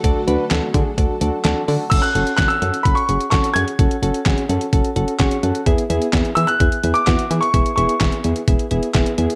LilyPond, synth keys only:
\new Staff \with { instrumentName = "Synth keys" } { \time 4/4 \key fis \minor \tempo 4 = 128 <d' fis' a'>8 <d' fis' b'>8 <d' fis' a'>8 <d' fis' gis'>8 <d' fis' a'>8 <d' fis' a'>8 <d' fis' a'>8 <d' fis' a'>8 | <cis' fis' a'>8 <cis' fis' a'>8 <cis' fis' a'>8 <cis' fis' a'>8 <cis' fis' a'>8 <cis' fis' gis'>8 <cis' fis' a'>8 <cis' fis' gis'>8 | <cis' fis' a'>8 <cis' fis' a'>8 <cis' fis' gis'>8 <cis' fis' a'>8 <cis' fis' a'>8 <cis' fis' a'>8 <cis' fis' gis' cis'''>8 <cis' fis' a' fis''>8 | <b e' gis'>8 <b e' gis'>8 <b e' gis'>8 <b e' gis'>8 <b e' gis'>8 <b e' gis'>8 <b e' fis'>8 <b e' gis'>8 |
<b e' gis'>8 <b e' gis'>8 <b e' gis'>8 <b e' gis'>8 <b e' gis'>8 <b e' gis'>8 <b e' gis'>8 <b e' gis'>8 | }